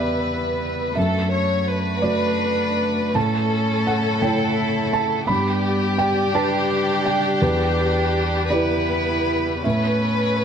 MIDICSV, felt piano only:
0, 0, Header, 1, 2, 480
1, 0, Start_track
1, 0, Key_signature, 2, "major"
1, 0, Tempo, 722892
1, 639, Time_signature, 6, 3, 24, 8
1, 2569, Tempo, 711744
1, 5449, Tempo, 755668
1, 6913, End_track
2, 0, Start_track
2, 0, Title_t, "Felt piano"
2, 0, Program_c, 0, 0
2, 0, Control_c, 0, 64, 127
2, 0, Note_on_c, 0, 40, 43
2, 0, Note_on_c, 0, 59, 33
2, 0, Note_on_c, 0, 67, 30
2, 0, Note_on_c, 0, 71, 56
2, 0, Note_on_c, 0, 74, 67
2, 0, Note_on_c, 0, 76, 39
2, 609, Note_off_c, 0, 59, 0
2, 610, Note_off_c, 0, 74, 0
2, 612, Note_off_c, 0, 67, 0
2, 615, Note_off_c, 0, 76, 0
2, 634, Note_on_c, 0, 76, 51
2, 643, Note_on_c, 0, 42, 46
2, 650, Control_c, 0, 64, 0
2, 654, Note_off_c, 0, 71, 0
2, 655, Note_off_c, 0, 40, 0
2, 769, Control_c, 0, 64, 127
2, 1324, Note_off_c, 0, 76, 0
2, 1333, Note_off_c, 0, 42, 0
2, 1341, Note_on_c, 0, 74, 68
2, 1349, Note_on_c, 0, 57, 40
2, 1351, Note_on_c, 0, 66, 42
2, 2061, Note_off_c, 0, 74, 0
2, 2064, Note_off_c, 0, 57, 0
2, 2066, Note_off_c, 0, 66, 0
2, 2091, Note_on_c, 0, 81, 68
2, 2092, Note_on_c, 0, 45, 54
2, 2107, Control_c, 0, 64, 0
2, 2205, Control_c, 0, 64, 127
2, 2542, Note_off_c, 0, 81, 0
2, 2570, Note_on_c, 0, 78, 70
2, 2785, Note_off_c, 0, 45, 0
2, 2791, Note_off_c, 0, 78, 0
2, 2804, Note_on_c, 0, 57, 42
2, 2805, Note_on_c, 0, 79, 63
2, 2809, Note_on_c, 0, 64, 44
2, 2813, Note_on_c, 0, 73, 47
2, 3259, Note_off_c, 0, 79, 0
2, 3286, Note_on_c, 0, 81, 77
2, 3498, Note_off_c, 0, 57, 0
2, 3500, Note_off_c, 0, 64, 0
2, 3503, Note_off_c, 0, 73, 0
2, 3509, Note_off_c, 0, 81, 0
2, 3516, Note_on_c, 0, 83, 80
2, 3530, Note_on_c, 0, 43, 47
2, 3539, Control_c, 0, 64, 0
2, 3634, Control_c, 0, 64, 127
2, 3972, Note_off_c, 0, 83, 0
2, 3995, Note_on_c, 0, 79, 74
2, 4222, Note_off_c, 0, 79, 0
2, 4224, Note_off_c, 0, 43, 0
2, 4235, Note_on_c, 0, 62, 48
2, 4240, Note_on_c, 0, 81, 81
2, 4243, Note_on_c, 0, 67, 48
2, 4243, Note_on_c, 0, 71, 55
2, 4693, Note_off_c, 0, 81, 0
2, 4718, Note_on_c, 0, 79, 73
2, 4931, Note_off_c, 0, 62, 0
2, 4935, Note_off_c, 0, 67, 0
2, 4935, Note_off_c, 0, 71, 0
2, 4943, Note_off_c, 0, 79, 0
2, 4960, Note_on_c, 0, 40, 60
2, 4965, Note_on_c, 0, 71, 76
2, 4974, Control_c, 0, 64, 0
2, 5070, Control_c, 0, 64, 127
2, 5661, Note_off_c, 0, 71, 0
2, 5663, Note_off_c, 0, 40, 0
2, 5680, Note_on_c, 0, 74, 70
2, 5688, Note_on_c, 0, 64, 40
2, 5691, Note_on_c, 0, 67, 41
2, 5693, Note_on_c, 0, 71, 44
2, 6376, Note_off_c, 0, 74, 0
2, 6380, Note_off_c, 0, 64, 0
2, 6381, Note_off_c, 0, 67, 0
2, 6382, Note_off_c, 0, 71, 0
2, 6404, Note_on_c, 0, 76, 50
2, 6413, Note_on_c, 0, 45, 42
2, 6415, Control_c, 0, 64, 0
2, 6508, Control_c, 0, 64, 127
2, 6913, Note_off_c, 0, 45, 0
2, 6913, Note_off_c, 0, 76, 0
2, 6913, End_track
0, 0, End_of_file